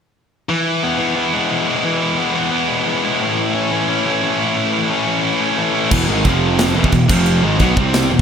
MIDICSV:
0, 0, Header, 1, 5, 480
1, 0, Start_track
1, 0, Tempo, 338600
1, 696, Time_signature, 4, 2, 24, 8
1, 11648, End_track
2, 0, Start_track
2, 0, Title_t, "Distorted electric guitar"
2, 0, Program_c, 0, 30
2, 1178, Note_on_c, 0, 59, 68
2, 1401, Note_on_c, 0, 52, 67
2, 1627, Note_off_c, 0, 59, 0
2, 1644, Note_on_c, 0, 59, 64
2, 1891, Note_on_c, 0, 56, 62
2, 2130, Note_off_c, 0, 52, 0
2, 2136, Note_on_c, 0, 52, 64
2, 2349, Note_off_c, 0, 56, 0
2, 2366, Note_on_c, 0, 56, 66
2, 2598, Note_off_c, 0, 52, 0
2, 2852, Note_off_c, 0, 59, 0
2, 3085, Note_on_c, 0, 59, 67
2, 3325, Note_on_c, 0, 52, 62
2, 3551, Note_off_c, 0, 59, 0
2, 3568, Note_on_c, 0, 59, 65
2, 3573, Note_off_c, 0, 56, 0
2, 3795, Note_on_c, 0, 56, 62
2, 4039, Note_off_c, 0, 52, 0
2, 4044, Note_on_c, 0, 52, 64
2, 4284, Note_off_c, 0, 56, 0
2, 4301, Note_on_c, 0, 56, 65
2, 4535, Note_off_c, 0, 59, 0
2, 4541, Note_off_c, 0, 56, 0
2, 5023, Note_on_c, 0, 61, 74
2, 5259, Note_off_c, 0, 52, 0
2, 5265, Note_on_c, 0, 52, 64
2, 5498, Note_off_c, 0, 61, 0
2, 5515, Note_on_c, 0, 61, 69
2, 5743, Note_on_c, 0, 57, 66
2, 5976, Note_off_c, 0, 52, 0
2, 5993, Note_on_c, 0, 52, 63
2, 6202, Note_off_c, 0, 57, 0
2, 6219, Note_on_c, 0, 57, 67
2, 6710, Note_off_c, 0, 61, 0
2, 6946, Note_on_c, 0, 61, 70
2, 7165, Note_off_c, 0, 52, 0
2, 7182, Note_on_c, 0, 52, 62
2, 7400, Note_off_c, 0, 61, 0
2, 7417, Note_on_c, 0, 61, 62
2, 7421, Note_off_c, 0, 57, 0
2, 7656, Note_on_c, 0, 57, 62
2, 7890, Note_off_c, 0, 52, 0
2, 7907, Note_on_c, 0, 52, 64
2, 8126, Note_off_c, 0, 57, 0
2, 8143, Note_on_c, 0, 57, 65
2, 8378, Note_off_c, 0, 52, 0
2, 8379, Note_off_c, 0, 61, 0
2, 8383, Note_off_c, 0, 57, 0
2, 11648, End_track
3, 0, Start_track
3, 0, Title_t, "Distorted electric guitar"
3, 0, Program_c, 1, 30
3, 699, Note_on_c, 1, 52, 70
3, 937, Note_on_c, 1, 64, 65
3, 1173, Note_on_c, 1, 56, 68
3, 1418, Note_on_c, 1, 59, 66
3, 1649, Note_off_c, 1, 64, 0
3, 1654, Note_on_c, 1, 64, 76
3, 1875, Note_off_c, 1, 59, 0
3, 1892, Note_on_c, 1, 59, 65
3, 2112, Note_off_c, 1, 56, 0
3, 2129, Note_on_c, 1, 56, 67
3, 2377, Note_off_c, 1, 64, 0
3, 2383, Note_on_c, 1, 64, 69
3, 2615, Note_off_c, 1, 52, 0
3, 2621, Note_on_c, 1, 52, 71
3, 2855, Note_off_c, 1, 64, 0
3, 2860, Note_on_c, 1, 64, 69
3, 3079, Note_off_c, 1, 56, 0
3, 3096, Note_off_c, 1, 59, 0
3, 3096, Note_on_c, 1, 56, 68
3, 3337, Note_on_c, 1, 59, 70
3, 3575, Note_off_c, 1, 64, 0
3, 3581, Note_on_c, 1, 64, 77
3, 3813, Note_off_c, 1, 59, 0
3, 3830, Note_on_c, 1, 59, 64
3, 4051, Note_off_c, 1, 56, 0
3, 4068, Note_on_c, 1, 56, 66
3, 4304, Note_off_c, 1, 64, 0
3, 4310, Note_on_c, 1, 64, 75
3, 4542, Note_on_c, 1, 45, 76
3, 4545, Note_off_c, 1, 56, 0
3, 4546, Note_off_c, 1, 59, 0
3, 4777, Note_off_c, 1, 64, 0
3, 4782, Note_on_c, 1, 64, 69
3, 5013, Note_on_c, 1, 57, 68
3, 5275, Note_on_c, 1, 61, 69
3, 5509, Note_off_c, 1, 64, 0
3, 5514, Note_on_c, 1, 64, 82
3, 5733, Note_off_c, 1, 61, 0
3, 5743, Note_off_c, 1, 45, 0
3, 5750, Note_on_c, 1, 61, 66
3, 5968, Note_off_c, 1, 57, 0
3, 5985, Note_on_c, 1, 57, 69
3, 6216, Note_off_c, 1, 64, 0
3, 6233, Note_on_c, 1, 64, 72
3, 6463, Note_on_c, 1, 45, 69
3, 6687, Note_off_c, 1, 64, 0
3, 6704, Note_on_c, 1, 64, 66
3, 6925, Note_off_c, 1, 57, 0
3, 6942, Note_on_c, 1, 57, 65
3, 6947, Note_off_c, 1, 61, 0
3, 7186, Note_on_c, 1, 61, 63
3, 7410, Note_off_c, 1, 64, 0
3, 7427, Note_on_c, 1, 64, 81
3, 7582, Note_off_c, 1, 52, 0
3, 7647, Note_off_c, 1, 61, 0
3, 7663, Note_off_c, 1, 45, 0
3, 7664, Note_on_c, 1, 61, 64
3, 7890, Note_off_c, 1, 57, 0
3, 7907, Note_on_c, 1, 57, 69
3, 8126, Note_off_c, 1, 64, 0
3, 8143, Note_on_c, 1, 64, 71
3, 8380, Note_on_c, 1, 40, 94
3, 8383, Note_off_c, 1, 61, 0
3, 8383, Note_off_c, 1, 64, 0
3, 8385, Note_off_c, 1, 57, 0
3, 8392, Note_on_c, 1, 47, 105
3, 8402, Note_on_c, 1, 52, 108
3, 8614, Note_off_c, 1, 40, 0
3, 8620, Note_off_c, 1, 47, 0
3, 8621, Note_on_c, 1, 44, 89
3, 8625, Note_off_c, 1, 52, 0
3, 8636, Note_on_c, 1, 51, 89
3, 8646, Note_on_c, 1, 56, 99
3, 8854, Note_off_c, 1, 44, 0
3, 8862, Note_off_c, 1, 51, 0
3, 8866, Note_off_c, 1, 56, 0
3, 8867, Note_on_c, 1, 41, 92
3, 8875, Note_on_c, 1, 48, 95
3, 8884, Note_on_c, 1, 53, 103
3, 9571, Note_off_c, 1, 41, 0
3, 9576, Note_on_c, 1, 40, 98
3, 9580, Note_off_c, 1, 48, 0
3, 9584, Note_off_c, 1, 53, 0
3, 9587, Note_on_c, 1, 47, 89
3, 9593, Note_on_c, 1, 52, 101
3, 9810, Note_off_c, 1, 40, 0
3, 9816, Note_off_c, 1, 47, 0
3, 9819, Note_off_c, 1, 52, 0
3, 9826, Note_on_c, 1, 40, 64
3, 9830, Note_on_c, 1, 47, 69
3, 10014, Note_off_c, 1, 40, 0
3, 10016, Note_off_c, 1, 47, 0
3, 10057, Note_on_c, 1, 41, 89
3, 10068, Note_on_c, 1, 48, 94
3, 10080, Note_on_c, 1, 53, 114
3, 10530, Note_off_c, 1, 41, 0
3, 10535, Note_off_c, 1, 48, 0
3, 10541, Note_off_c, 1, 53, 0
3, 10541, Note_on_c, 1, 44, 84
3, 10551, Note_on_c, 1, 51, 88
3, 10562, Note_on_c, 1, 56, 97
3, 10759, Note_off_c, 1, 51, 0
3, 10765, Note_on_c, 1, 47, 98
3, 10771, Note_off_c, 1, 44, 0
3, 10774, Note_off_c, 1, 56, 0
3, 10779, Note_on_c, 1, 54, 105
3, 10786, Note_on_c, 1, 59, 105
3, 11003, Note_off_c, 1, 47, 0
3, 11010, Note_off_c, 1, 54, 0
3, 11011, Note_on_c, 1, 48, 89
3, 11014, Note_off_c, 1, 59, 0
3, 11025, Note_on_c, 1, 55, 94
3, 11032, Note_on_c, 1, 60, 106
3, 11481, Note_off_c, 1, 48, 0
3, 11481, Note_on_c, 1, 40, 64
3, 11486, Note_on_c, 1, 47, 71
3, 11492, Note_off_c, 1, 55, 0
3, 11495, Note_off_c, 1, 60, 0
3, 11648, Note_off_c, 1, 40, 0
3, 11648, Note_off_c, 1, 47, 0
3, 11648, End_track
4, 0, Start_track
4, 0, Title_t, "Picked electric bass"
4, 0, Program_c, 2, 34
4, 8388, Note_on_c, 2, 28, 97
4, 8609, Note_off_c, 2, 28, 0
4, 8628, Note_on_c, 2, 32, 90
4, 8848, Note_off_c, 2, 32, 0
4, 8869, Note_on_c, 2, 29, 96
4, 9534, Note_off_c, 2, 29, 0
4, 9577, Note_on_c, 2, 28, 96
4, 9801, Note_off_c, 2, 28, 0
4, 9818, Note_on_c, 2, 28, 81
4, 10042, Note_off_c, 2, 28, 0
4, 10057, Note_on_c, 2, 29, 98
4, 10503, Note_off_c, 2, 29, 0
4, 10536, Note_on_c, 2, 32, 91
4, 10759, Note_off_c, 2, 32, 0
4, 10776, Note_on_c, 2, 35, 91
4, 10999, Note_off_c, 2, 35, 0
4, 11016, Note_on_c, 2, 36, 97
4, 11461, Note_off_c, 2, 36, 0
4, 11510, Note_on_c, 2, 28, 87
4, 11648, Note_off_c, 2, 28, 0
4, 11648, End_track
5, 0, Start_track
5, 0, Title_t, "Drums"
5, 8380, Note_on_c, 9, 49, 111
5, 8380, Note_on_c, 9, 57, 57
5, 8385, Note_on_c, 9, 36, 107
5, 8522, Note_off_c, 9, 49, 0
5, 8522, Note_off_c, 9, 57, 0
5, 8526, Note_off_c, 9, 36, 0
5, 8854, Note_on_c, 9, 57, 62
5, 8861, Note_on_c, 9, 36, 91
5, 8996, Note_off_c, 9, 57, 0
5, 9002, Note_off_c, 9, 36, 0
5, 9337, Note_on_c, 9, 57, 63
5, 9344, Note_on_c, 9, 38, 106
5, 9479, Note_off_c, 9, 57, 0
5, 9486, Note_off_c, 9, 38, 0
5, 9697, Note_on_c, 9, 36, 90
5, 9813, Note_on_c, 9, 57, 70
5, 9818, Note_off_c, 9, 36, 0
5, 9818, Note_on_c, 9, 36, 89
5, 9954, Note_off_c, 9, 57, 0
5, 9960, Note_off_c, 9, 36, 0
5, 10053, Note_on_c, 9, 57, 99
5, 10057, Note_on_c, 9, 36, 109
5, 10195, Note_off_c, 9, 57, 0
5, 10199, Note_off_c, 9, 36, 0
5, 10289, Note_on_c, 9, 57, 64
5, 10431, Note_off_c, 9, 57, 0
5, 10767, Note_on_c, 9, 57, 62
5, 10773, Note_on_c, 9, 36, 87
5, 10908, Note_off_c, 9, 57, 0
5, 10915, Note_off_c, 9, 36, 0
5, 11014, Note_on_c, 9, 36, 110
5, 11156, Note_off_c, 9, 36, 0
5, 11251, Note_on_c, 9, 57, 58
5, 11258, Note_on_c, 9, 38, 108
5, 11393, Note_off_c, 9, 57, 0
5, 11400, Note_off_c, 9, 38, 0
5, 11648, End_track
0, 0, End_of_file